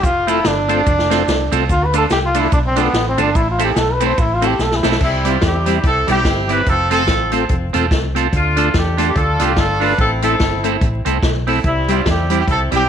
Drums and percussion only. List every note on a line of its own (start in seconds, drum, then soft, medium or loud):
0.03 kick loud
0.03 hi-hat pedal medium
0.03 ride medium
0.03 cabasa medium
0.28 ride medium
0.28 cabasa medium
0.44 snare loud
0.44 ride medium
0.44 cabasa medium
0.69 ride medium
0.69 cabasa medium
0.86 kick loud
0.86 ride medium
0.86 cabasa medium
0.99 snare medium
1.11 snare medium
1.11 ride medium
1.11 cabasa medium
1.28 snare loud
1.28 ride medium
1.28 cabasa medium
1.52 ride medium
1.52 cabasa medium
1.69 kick loud
1.69 ride medium
1.69 cabasa medium
1.94 ride medium
1.94 cabasa medium
2.10 snare loud
2.10 ride medium
2.10 cabasa medium
2.34 ride medium
2.34 cabasa medium
2.52 kick loud
2.52 ride medium
2.52 cabasa medium
2.76 ride medium
2.76 cabasa medium
2.94 snare loud
2.94 ride medium
2.94 cabasa medium
3.18 ride medium
3.18 cabasa medium
3.35 kick loud
3.35 ride medium
3.35 cabasa medium
3.59 ride medium
3.59 cabasa medium
3.76 snare loud
3.76 ride medium
3.76 cabasa medium
4.01 ride medium
4.01 cabasa medium
4.18 kick loud
4.18 ride medium
4.18 cabasa medium
4.42 ride medium
4.42 cabasa medium
4.59 snare medium
4.59 cabasa medium
4.71 snare medium
4.83 snare loud
4.83 cabasa medium
4.92 snare loud
5.00 kick medium
5.00 crash loud
5.25 closed hi-hat medium
5.41 kick loud
5.41 snare loud
5.41 closed hi-hat medium
5.66 closed hi-hat medium
5.83 kick loud
5.83 closed hi-hat medium
6.08 closed hi-hat medium
6.25 kick loud
6.25 snare loud
6.25 closed hi-hat medium
6.49 closed hi-hat medium
6.66 kick medium
6.66 closed hi-hat medium
6.91 closed hi-hat medium
7.07 kick loud
7.07 snare loud
7.07 closed hi-hat medium
7.32 closed hi-hat medium
7.49 kick loud
7.49 closed hi-hat medium
7.74 closed hi-hat medium
7.91 kick loud
7.91 snare medium
7.91 closed hi-hat medium
8.16 closed hi-hat medium
8.33 kick medium
8.33 closed hi-hat medium
8.57 closed hi-hat medium
8.74 kick loud
8.74 snare loud
8.74 closed hi-hat medium
8.98 closed hi-hat medium
9.16 kick loud
9.16 closed hi-hat medium
9.40 closed hi-hat medium
9.57 kick loud
9.57 snare loud
9.57 closed hi-hat medium
9.81 open hi-hat soft
9.98 kick medium
9.98 closed hi-hat medium
10.22 closed hi-hat medium
10.40 kick loud
10.40 snare loud
10.40 closed hi-hat medium
10.64 closed hi-hat medium
10.81 kick loud
10.81 closed hi-hat medium
11.06 closed hi-hat medium
11.23 kick loud
11.23 snare loud
11.23 closed hi-hat medium
11.47 open hi-hat soft
11.64 kick medium
11.64 closed hi-hat medium
11.88 closed hi-hat medium
12.06 kick loud
12.06 snare loud
12.06 closed hi-hat medium
12.30 closed hi-hat medium
12.48 kick loud
12.48 closed hi-hat medium
12.72 closed hi-hat medium